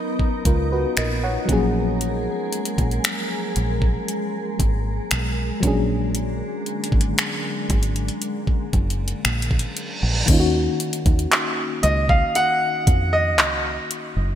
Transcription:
Already playing: F#3 B3 C#4 D#4 A#4
0.19 kick
0.45 C#2 F4 A#4, kick, closed hi-hat
0.72 F#4 B4
0.97 A#1 A#4 D#5, finger snap, closed hi-hat
1.23 C#5 F#5
1.45 A#1 F#3 G#3 A#3 C#4 G#4, kick, closed hi-hat
1.51 F3 G#4
2.01 closed hi-hat
2.53 closed hi-hat
2.65 closed hi-hat
2.78 A#1, kick, closed hi-hat
2.91 closed hi-hat
3.04 finger snap, closed hi-hat
3.56 A#1, closed hi-hat
3.82 kick
4.08 closed hi-hat
4.59 G#1, kick, closed hi-hat
5.11 B1, finger snap, closed hi-hat
5.60 A#1 D3 F#3 G#3 A#3 C#4, kick, closed hi-hat
5.66 D4 G#4
6.15 closed hi-hat
6.66 closed hi-hat
6.84 closed hi-hat
6.92 G#1, kick
7.01 closed hi-hat
7.18 finger snap, closed hi-hat
7.70 G#1, kick, closed hi-hat
7.83 closed hi-hat
7.96 closed hi-hat
8.08 closed hi-hat
8.22 closed hi-hat, reverse cymbal
8.47 kick
8.73 F#1, kick, closed hi-hat
8.90 closed hi-hat
9.08 closed hi-hat
9.25 A#1, finger snap, closed hi-hat
9.42 closed hi-hat
9.51 kick
9.59 closed hi-hat
9.77 closed hi-hat
10.03 A#1
10.26 D#2 D#3 A#3 C#4, kick, closed hi-hat, crash
10.31 D#4 F4
10.40 F#4
10.80 closed hi-hat
10.93 closed hi-hat
11.06 D#2, kick, closed hi-hat
11.19 closed hi-hat
11.32 clap, closed hi-hat
11.83 C#2 D#5, closed hi-hat
12.09 F5, kick
12.35 F#5, closed hi-hat
12.87 F2, kick, closed hi-hat
13.13 D#5
13.38 C#2, clap, closed hi-hat
13.91 closed hi-hat
14.16 F#1

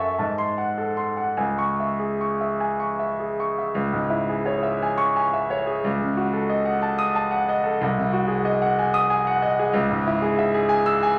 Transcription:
Already playing: F#2 A4 A5 C#6
0.00 E5
0.18 G#2 A5
0.38 C6
0.58 F#5
0.78 A4
0.97 C6
1.17 F#5
1.37 C#2 G#5
1.58 C#6
1.80 E5
1.99 G#4
2.21 C#6
2.41 E5
2.60 G#5
2.80 C#6
2.99 E5
3.20 G#4
3.40 C#6
3.59 E5
3.75 C#2
3.93 G#2
4.10 E4
4.29 G#4
4.46 C#5
4.63 E5
4.82 G#5
4.98 C#6
5.16 G#5
5.33 E5
5.50 C#5
5.67 G#4
5.84 C#2
6.01 C#3
6.17 F#4
6.33 A4
6.49 D#5
6.65 F#5
6.82 A5
6.98 D#6
7.15 A5
7.31 F#5
7.49 D#5
7.63 A4
7.81 C2
7.97 C3
8.13 F#4
8.28 G#4
8.45 D#5
8.62 F#5
8.79 G#5
8.94 D#6
9.10 G#5
9.27 F#5
9.42 D#5
9.59 G#4
9.73 C#2
9.90 G#2
10.07 E4
10.22 G#4
10.38 E5
10.54 G#4
10.69 G#5
10.86 E6
11.03 G#5

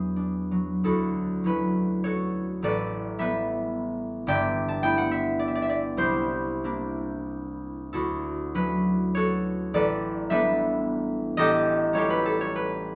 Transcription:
Already playing: E2 F#3 B3 D4 G#4 D5 E5
0.16 D4
0.51 F#3
0.84 D2 E4 F#4 A4
1.44 F#3 C#4 E4 B4
2.04 F#4 A4 C#5
2.62 A1 A2 A4 B4 D5
3.18 G3 B3 E4 A4 B4 E5
4.27 G1 G2 D5 E5 G5
4.68 A5
4.83 A3 B3 E4 G5
4.98 F#5
5.11 E5
5.39 D5
5.48 E5
5.55 D5
5.62 E5
5.69 D5
5.97 C2 E4 G4 C5
6.64 A#3 D4 E4
7.93 D2 E4 F#4 A4
8.55 F#3 C#4 E4 B4
9.15 F#4 A4 C#5
9.74 A1 A4 B4 D5
10.30 G3 B3 D4 A4 B4 E5
11.37 A1 G4 A4 D#5
11.93 G3 C#4 F4 A4 C#5
11.98 G4
12.10 B4
12.26 A4
12.41 C#5
12.56 B4

